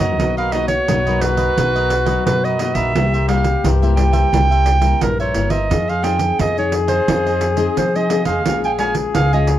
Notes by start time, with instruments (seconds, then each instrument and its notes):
Already playing: nylon-string guitar C#3, trombone F#4
0.00 upright bass F#2, nylon-string guitar F#3 A#3 D#4, cavaquinho A#4 C#5 F#5, clarinet D#5
0.18 upright bass B1, nylon-string guitar B2, cavaquinho D#4 A#4 B4 D#5, trombone F#4, pandeiro
0.37 cavaquinho A#4 B4 D#5, clarinet F5, pandeiro
0.52 nylon-string guitar F#3 A#3 D#4, cavaquinho D#4 A#4 B4 D#5, clarinet D#5, pandeiro
0.68 clarinet C#5, muted cavaquinho stroke, pandeiro
0.88 upright bass B1, nylon-string guitar F#2 F#3 A#3 D#4, cavaquinho D#4 A#4 B4 D#5, pandeiro
1.06 nylon-string guitar F#3 A#3 D#4, cavaquinho A#4 B4 D#5, pandeiro
1.21 nylon-string guitar F#3 A#3 D#4, clarinet B4, pandeiro
1.37 cavaquinho A#4 B4 D#5, pandeiro
1.57 upright bass B1, nylon-string guitar B2 F#3 D#4, cavaquinho D#4 A#4 B4 D#5, pandeiro
1.75 cavaquinho A#4 B4 D#5, pandeiro
1.90 muted cavaquinho stroke, pandeiro
2.06 nylon-string guitar F#3 D#4, cavaquinho A#4 B4 D#5, pandeiro
2.26 nylon-string guitar F#2, upright bass B2, clarinet B4, pandeiro
2.44 cavaquinho A#4 B4 D#5, clarinet D#5, pandeiro
2.59 nylon-string guitar F#3 A#3 D#4, cavaquinho D#4 A#4 B4 D#5, pandeiro
2.75 upright bass A#1, cavaquinho A#4 B4 D#5, clarinet E5, pandeiro
2.95 upright bass C2, nylon-string guitar C3 G3 A#3 E4, cavaquinho E4 A#4 C5 E5, trombone G4, pandeiro
3.13 cavaquinho A#4 C5 E5, pandeiro
3.28 nylon-string guitar G3 A#3, cavaquinho E4 A#4 C5 E5, clarinet F5, pandeiro
3.44 muted cavaquinho stroke, pandeiro
3.64 upright bass C2, nylon-string guitar G2, cavaquinho E4 A#4 C5 E5, pandeiro
3.82 nylon-string guitar G3 A#3 E4, cavaquinho A#4 C5 E5, pandeiro
3.97 nylon-string guitar G3 A#3 E4, clarinet G5, pandeiro
4.13 cavaquinho A#4 C5 E5, pandeiro
4.33 upright bass C2, nylon-string guitar C3 G3 A#3 E4, cavaquinho E4 A#4 C5 E5, pandeiro
4.51 cavaquinho A#4 C5 E5, pandeiro
4.66 muted cavaquinho stroke, pandeiro
4.81 nylon-string guitar G3 A#3 E4, cavaquinho A#4 C5 E5, pandeiro
5.01 upright bass A#1, nylon-string guitar G2, clarinet A#4, pandeiro
5.20 cavaquinho A#4 C5 E5, clarinet C#5, pandeiro
5.34 upright bass G1, nylon-string guitar G3 A#3 E4, cavaquinho E4 A#4 C5 E5, pandeiro
5.50 cavaquinho A#4 C5 E5, clarinet D#5, pandeiro
5.70 upright bass F2, nylon-string guitar F3 C4 D#4 G#4, cavaquinho F4 G#4 C5 D#5, trombone G#4, pandeiro
5.88 cavaquinho G#4 C5 D#5, clarinet F5, pandeiro
6.03 nylon-string guitar C4 D#4 G#4, cavaquinho F4 G#4 C5 D#5, clarinet G5, pandeiro
6.18 muted cavaquinho stroke, pandeiro
6.39 upright bass F2, nylon-string guitar C3, cavaquinho F4 G#4 C5 D#5, clarinet D#5, pandeiro
6.57 nylon-string guitar D#4 G#4, cavaquinho G#4 D#5, clarinet C#5, pandeiro
6.72 pandeiro
6.88 cavaquinho G#4 C5 D#5, clarinet C5, pandeiro
7.08 upright bass F2, nylon-string guitar F3 C4 D#4 G#4, cavaquinho F4 G#4 C5 D#5, pandeiro
7.26 cavaquinho G#4 C5 D#5, pandeiro
7.41 muted cavaquinho stroke, pandeiro
7.57 nylon-string guitar C4 D#4 G#4, cavaquinho G#4 C5 D#5, pandeiro
7.77 nylon-string guitar C3, upright bass F3, clarinet C5, pandeiro
7.95 nylon-string guitar C4 D#4 G#4, cavaquinho G#4 C5 D#5, clarinet D#5, pandeiro
8.10 nylon-string guitar C4 D#4 G#4, cavaquinho F4 G#4 C5 D#5, pandeiro
8.25 upright bass F2, cavaquinho G#4 C5 D#5, clarinet F5, pandeiro
8.46 upright bass A#1, nylon-string guitar A#2 G#3 C#4 F4, trombone G#4, cavaquinho A#4 C#5 F5 G#5, pandeiro
8.64 cavaquinho C#5 F5 G#5, clarinet G5, pandeiro
8.78 nylon-string guitar G#3 C#4 F4, cavaquinho A#4 C#5 F5 G#5, clarinet G#5, pandeiro
8.94 muted cavaquinho stroke, pandeiro
9.14 upright bass C#2, nylon-string guitar F2, cavaquinho A#4 C#5 F5 G#5, clarinet F5, pandeiro
9.33 nylon-string guitar G#3 C#4 F4, cavaquinho C#5 F5 G#5, clarinet D#5, pandeiro
9.47 pandeiro